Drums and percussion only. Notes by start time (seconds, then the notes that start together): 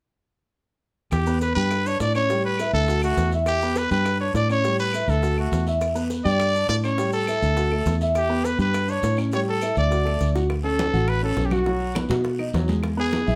1.11 high bongo, long guiro, claves, maracas
1.26 maracas
1.41 high bongo, short guiro, maracas
1.56 short guiro, maracas
1.71 high bongo, long guiro, claves, maracas
1.86 maracas
2.00 high bongo, low bongo, short guiro, maracas
2.15 short guiro, claves, maracas
2.29 high bongo, long guiro, maracas
2.58 high bongo, short guiro, claves, maracas
2.74 high bongo, short guiro, maracas
2.88 high bongo, long guiro, maracas
3.02 high bongo, claves, maracas
3.17 high bongo, low bongo, short guiro, maracas
3.31 high bongo, short guiro, maracas
3.46 high bongo, long guiro, claves, maracas
3.61 maracas
3.75 high bongo, short guiro, maracas
3.91 short guiro, maracas
4.05 high bongo, long guiro, claves, maracas
4.35 high bongo, low bongo, short guiro, maracas
4.49 short guiro, claves, maracas
4.64 high bongo, long guiro, maracas
4.79 maracas
4.93 high bongo, short guiro, claves, maracas
5.08 high bongo, short guiro, maracas
5.22 high bongo, long guiro, maracas
5.38 high bongo, claves
5.52 high bongo, low bongo, short guiro, maracas
5.67 high bongo, short guiro, maracas
5.81 high bongo, long guiro, claves, maracas
5.96 maracas
6.10 high bongo, short guiro, maracas
6.25 short guiro, maracas
6.40 high bongo, long guiro, claves, maracas
6.55 maracas
6.69 high bongo, low bongo, short guiro, maracas
6.84 short guiro, claves, maracas
6.98 high bongo, long guiro, maracas
7.13 maracas
7.27 high bongo, short guiro, claves, maracas
7.42 high bongo, short guiro, maracas
7.57 high bongo, long guiro, maracas
7.72 high bongo, claves
7.86 high bongo, low bongo, short guiro, maracas
8.01 high bongo, short guiro, maracas
8.15 high bongo, long guiro, claves, maracas
8.44 high bongo, short guiro, maracas
8.59 short guiro, maracas
8.74 high bongo, long guiro, claves, maracas
8.88 maracas
9.02 high bongo, low bongo, short guiro, maracas
9.17 short guiro, claves, maracas
9.31 high bongo, long guiro, maracas
9.61 high bongo, short guiro, claves, maracas
9.76 high bongo, short guiro, maracas
9.91 high bongo, long guiro, maracas
10.06 high bongo, claves
10.20 high bongo, short guiro, maracas
10.35 low bongo, short guiro, maracas
10.50 high bongo, high conga, long guiro, claves
10.65 high conga
10.79 high bongo, high conga, short guiro
10.94 high conga, short guiro
11.08 high bongo, high conga, long guiro, claves
11.23 high conga
11.37 high bongo, low bongo, high conga, short guiro
11.50 high conga, short guiro, claves
11.64 high bongo, high conga, long guiro
11.81 high conga
11.94 high bongo, high conga, short guiro, claves
12.09 high bongo, high conga, short guiro
12.24 high bongo, high conga, long guiro
12.39 high bongo, high conga, claves
12.53 high bongo, low bongo, high conga, short guiro
12.68 high bongo, high conga, short guiro
12.83 high bongo, high conga, long guiro, claves
12.98 high conga
13.12 high bongo, high conga, short guiro
13.27 high conga, short guiro